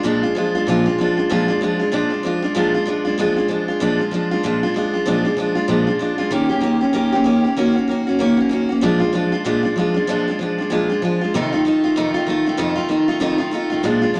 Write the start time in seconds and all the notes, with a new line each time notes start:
0.03 A#2 F3 G#3 D4 F4
0.23 G#3 D4 F4
0.35 F3 G#3 D4 F4
0.55 G#3 D4 F4
0.67 A#2 F3 G#3 D4 F4
0.86 G#3 D4 F4
0.98 F3 G#3 D4 F4
1.17 G#3 D4 F4
1.30 A#2 F3 G#3 D4 F4
1.48 G#3 D4 F4
1.61 F3 G#3 D4 F4
1.80 G#3 D4 F4
1.92 A#2 F3 G#3 D4 F4
2.10 G#3 D4 F4
2.23 F3 G#3 D4 F4
2.42 G#3 D4 F4
2.55 A#2 F3 G#3 D4 F4
2.74 G#3 D4 F4
2.86 F3 G#3 D4 F4
3.05 G#3 D4 F4
3.18 A#2 F3 G#3 D4 F4
3.37 G#3 D4 F4
3.48 F3 G#3 D4 F4
3.68 G#3 D4 F4
3.80 A#2 F3 G#3 D4 F4
3.99 G#3 D4 F4
4.11 F3 G#3 D4 F4
4.31 G#3 D4 F4
4.43 A#2 F3 G#3 D4 F4
4.63 G#3 D4 F4
4.74 F3 G#3 D4 F4
4.93 G#3 D4 F4
5.06 A#2 F3 G#3 D4 F4
5.25 G#3 D4 F4
5.37 F3 G#3 D4 F4
5.55 G#3 D4 F4
5.68 A#2 F3 G#3 D4 F4
5.87 G#3 D4 F4
5.99 F3 G#3 D4 F4
6.18 G#3 D4 F4
6.31 D#3 A#3 C#4 G4
6.49 A#3 C#4 G4
6.61 D#3 A#3 C#4 G4
6.81 A#3 C#4 G4
6.93 D#3 A#3 C#4 G4
7.12 A#3 C#4 G4
7.24 D#3 A#3 C#4 G4
7.44 A#3 C#4 G4
7.56 D#3 A#3 C#4 F#4
7.76 A#3 C#4 F#4
7.88 D#3 A#3 C#4 F#4
8.07 A#3 C#4 F#4
8.19 D#3 A#3 C#4 F#4
8.37 A#3 C#4 F#4
8.49 D#3 A#3 C#4 F#4
8.69 A#3 C#4 F#4
8.81 A#2 F3 G#3 D4 F4
9.00 G#3 D4 F4
9.13 F3 G#3 D4 F4
9.32 G#3 D4 F4
9.44 A#2 F3 G#3 D4 F4
9.63 G#3 D4 F4
9.76 F3 G#3 D4 F4
9.94 G#3 D4 F4
10.07 A#2 F3 G#3 D4 F4
10.28 G#3 D4 F4
10.39 F3 G#3 D4 F4
10.58 G#3 D4 F4
10.70 A#2 F3 G#3 D4 F4
10.89 G#3 D4 F4
11.02 F3 G#3 D4 F4
11.21 G#3 D4 F4
11.34 F2 C3 D#3 A3 D#4 F4
11.52 D#3 A3 D#4 F4
11.65 D#3 A3 D#4 F4
11.84 D#3 A3 D#4 F4
11.96 F2 C3 D#3 A3 D#4 F4
12.14 D#3 A3 D#4 F4
12.26 D#3 A3 D#4 F4
12.46 D#3 A3 D#4 F4
12.57 F2 C3 D#3 A3 D#4 F4
12.75 D#3 A3 D#4 F4
12.89 D#3 A3 D#4 F4
13.08 D#3 A3 D#4 F4
13.20 F2 C3 D#3 A3 D#4 F4
13.38 D#3 A3 D#4 F4
13.51 D#3 A3 D#4 F4
13.70 D#3 A3 D#4 F4
13.83 A#2 F3 G#3 D4 F4
14.02 G#3 D4 F4
14.14 F3 G#3 D4